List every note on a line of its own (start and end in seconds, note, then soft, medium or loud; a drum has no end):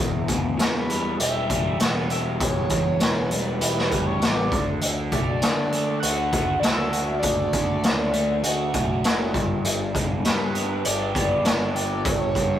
0.00 0.27 E1 medium
0.00 1.50 E2 medium
0.28 0.57 D2 medium
0.28 1.80 B2 medium
0.28 kick medium
0.28 closed hi-hat medium
0.59 1.15 E2 medium
0.59 2.10 E3 medium
0.59 1.15 B4 medium
0.59 snare loud
0.59 closed hi-hat medium
0.90 1.50 G3 medium
0.90 closed hi-hat medium
1.20 1.48 E1 medium
1.20 2.10 G4 medium
1.20 1.76 E5 medium
1.20 closed hi-hat medium
1.50 1.78 E1 medium
1.50 3.01 G3 medium
1.50 kick medium
1.50 closed hi-hat medium
1.80 2.36 E1 medium
1.80 3.32 B3 medium
1.80 snare loud
1.80 closed hi-hat medium
2.10 3.60 G4 medium
2.10 2.24 E5 loud
2.10 closed hi-hat medium
2.40 2.69 E1 medium
2.40 3.92 E2 medium
2.40 3.03 C#5 loud
2.40 kick medium
2.40 closed hi-hat medium
2.70 2.99 E2 medium
2.70 4.22 B2 medium
2.70 kick medium
2.70 closed hi-hat medium
3.00 3.30 E1 medium
3.00 4.51 E3 medium
3.00 3.60 B4 medium
3.00 snare loud
3.00 closed hi-hat medium
3.31 3.59 E1 medium
3.31 3.91 G3 medium
3.31 closed hi-hat medium
3.61 3.90 E1 medium
3.61 4.52 G4 medium
3.61 4.08 B4 medium
3.61 closed hi-hat medium
3.78 snare soft
3.91 4.20 D2 medium
3.91 4.52 G3 medium
3.91 kick medium
3.91 closed hi-hat medium
4.06 4.21 C#5 medium
4.21 4.50 A1 medium
4.21 4.52 B3 medium
4.21 4.64 D5 medium
4.21 snare loud
4.21 closed hi-hat medium
4.51 4.80 D2 medium
4.51 4.81 D3 medium
4.51 kick loud
4.51 closed hi-hat medium
4.81 5.10 D2 medium
4.81 5.42 D3 medium
4.81 closed hi-hat medium
5.12 5.41 B1 medium
5.12 5.71 A3 medium
5.12 5.99 D5 medium
5.12 kick medium
5.12 closed hi-hat medium
5.42 6.93 D3 medium
5.42 5.99 D3 medium
5.42 snare loud
5.42 closed hi-hat medium
5.72 6.31 A3 medium
5.72 closed hi-hat medium
6.00 6.31 D2 medium
6.00 6.91 F#4 medium
6.00 6.58 F#5 loud
6.00 closed hi-hat medium
6.32 6.61 D2 medium
6.32 7.52 A3 medium
6.32 kick medium
6.32 closed hi-hat medium
6.60 7.19 D2 medium
6.60 9.04 D4 medium
6.60 7.18 E5 loud
6.60 closed hi-hat medium
6.64 snare loud
6.93 8.42 F#4 medium
6.93 closed hi-hat medium
7.19 7.82 D3 medium
7.19 8.38 D5 loud
7.19 kick medium
7.19 closed hi-hat medium
7.23 7.52 D2 medium
7.53 7.82 D3 medium
7.53 8.12 A3 medium
7.53 kick medium
7.53 closed hi-hat medium
7.83 8.12 D2 medium
7.83 9.34 D3 medium
7.83 snare loud
7.83 closed hi-hat medium
8.13 8.42 D2 medium
8.13 8.73 A3 medium
8.13 closed hi-hat medium
8.43 8.72 D2 medium
8.43 9.34 F#4 medium
8.43 closed hi-hat medium
8.74 9.03 B1 medium
8.74 9.34 A3 medium
8.74 kick medium
8.74 closed hi-hat medium
9.04 9.33 F#1 medium
9.04 11.45 D4 medium
9.04 snare loud
9.04 closed hi-hat medium
9.34 9.63 G1 medium
9.34 9.65 G2 medium
9.34 kick medium
9.34 closed hi-hat medium
9.65 9.93 G1 medium
9.65 11.16 G2 medium
9.65 closed hi-hat medium
9.95 10.23 E1 medium
9.95 11.45 D3 medium
9.95 kick medium
9.95 closed hi-hat medium
10.25 10.81 G2 medium
10.25 11.75 G3 medium
10.25 10.87 B4 loud
10.25 snare loud
10.25 closed hi-hat medium
10.55 11.14 B3 medium
10.55 closed hi-hat medium
10.85 11.14 G1 medium
10.85 11.74 G4 medium
10.85 11.75 D5 medium
10.85 closed hi-hat medium
11.15 11.43 G1 medium
11.15 12.59 B3 medium
11.15 kick medium
11.15 closed hi-hat medium
11.45 12.01 G1 medium
11.45 12.59 D4 medium
11.45 snare loud
11.45 closed hi-hat medium
11.75 12.59 G4 medium
11.75 12.08 D5 loud
11.75 closed hi-hat medium
12.05 12.34 G1 medium
12.05 12.59 G2 medium
12.05 12.13 C#5 loud
12.05 kick loud
12.05 closed hi-hat medium
12.11 12.22 D5 medium
12.20 12.59 C#5 loud
12.35 12.59 G2 medium
12.35 12.59 D3 medium
12.35 kick medium
12.35 closed hi-hat medium